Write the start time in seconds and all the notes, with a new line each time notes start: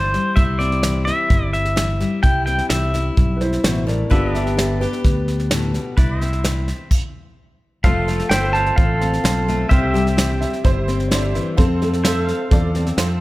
Already playing: G1 E3 C4 E4 C5
0.14 G3, snare
0.36 C2 C3 E4 C5 E5, kick, snare
0.59 C4 D5, snare
0.72 snare
0.83 E3, snare, hi-hat pedal
1.05 E4 E5, snare
1.30 G1 G2, kick, snare
1.53 E5, snare
1.65 snare
1.76 E3, snare, hi-hat pedal
2.00 G3, snare
2.23 C2 C3 E4 G5, kick, snare
2.46 C4 G5, snare
2.58 snare
2.69 C2 E3 E5, snare, hi-hat pedal
2.94 E4, snare
3.17 B1 G2, kick, snare
3.37 E4 B4, snare
3.41 C5
3.52 snare
3.63 A1 B2 E4 C5, snare, hi-hat pedal
3.87 A2 A#4 D5, snare
4.10 G1 G2 D3 B3 D4 F4 G4 B4 D5 E5, kick, snare
4.34 D4 G4 D5 E5, snare
4.47 snare
4.57 D3 G4 E5, snare, hi-hat pedal
4.80 G4 B4, snare
4.93 snare
5.04 D2 G2, kick, snare
5.28 snare
5.40 snare
5.51 A2, snare, hi-hat pedal
5.74 B2, snare
5.97 C2 C3 E4 B4 D5, kick, snare
6.17 C5
6.21 C4 E5, snare
6.33 snare
6.44 E3, snare, hi-hat pedal
6.68 snare
6.91 kick, crash
7.84 F1 F2 F3 A3 C4 F4 A4 C5 F5, kick, snare
8.08 A3, snare
8.19 snare
8.29 G1 F3 C4 A4 B4 C5 E5 G5, snare, hi-hat pedal
8.53 C5 F5 A5, snare
8.66 snare
8.76 A1 C3 F4 A4 C5 F5, kick, snare
9.01 C4, snare
9.13 snare
9.23 B1 F3 F4 A4 C5, snare, hi-hat pedal
9.48 A3, snare
9.69 C2 C3 C4 E4 G4 C5 E5 F5, kick, snare
9.92 G3 E5, snare
10.07 snare
10.17 E3 E4 G4 C5, snare, hi-hat pedal
10.41 E5, snare
10.53 snare
10.64 G1 G2 E4 G4 C5, kick, snare
10.88 C4, snare
11.00 snare
11.08 D3 E4 G4 C#5, snare, hi-hat pedal
11.12 C5 D5
11.35 E3, snare
11.57 F2 C4 F4 A4 C5, kick, snare
11.82 A3 A4, snare
11.93 snare
12.04 F3 F4 A4 C5 E5, snare, hi-hat pedal
12.24 F5, snare
12.51 E2 C3 F4 A4 D5, kick, snare
12.75 C4, snare
12.86 snare
12.97 F2 F3 F4 A4 C5, snare, hi-hat pedal